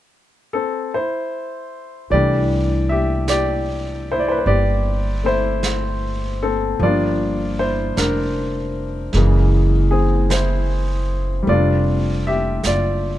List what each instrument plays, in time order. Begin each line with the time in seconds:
0.53 grand piano C4 A4
0.94 grand piano E4 C5
2.10 upright bass C2, grand piano E3 G3 G4 D5, brush sweep
2.14 grand piano A3 D4
2.89 grand piano G4 E5
3.28 grand piano G4 D5, brush sweep, snare, hi-hat pedal
4.12 grand piano E4 C5
4.20 grand piano D5
4.28 grand piano B4 C5
4.39 grand piano C5
4.45 upright bass G1, grand piano G4 D5, brush sweep
5.23 grand piano A3 C4 E4 C5
5.63 brush sweep, snare, hi-hat pedal
6.43 grand piano C4 A4
6.79 upright bass G1, grand piano F3 G3 F4 D5, brush sweep
6.84 grand piano A#3 D4
7.59 grand piano E4 C5
7.97 upright bass F1, grand piano D4 A#4, brush sweep, snare, hi-hat pedal
9.13 upright bass F#1, grand piano E3 G#3 A#3, brush sweep, snare
9.17 grand piano C#3
9.91 grand piano C4 G#4
10.30 grand piano E4 C5, brush sweep, snare, hi-hat pedal
11.43 grand piano G3 A3
11.47 upright bass F1, grand piano C4 F4 D5, brush sweep
11.53 grand piano D4
12.27 grand piano G4 E5
12.64 upright bass F#1, grand piano F4 D5, brush sweep, snare, hi-hat pedal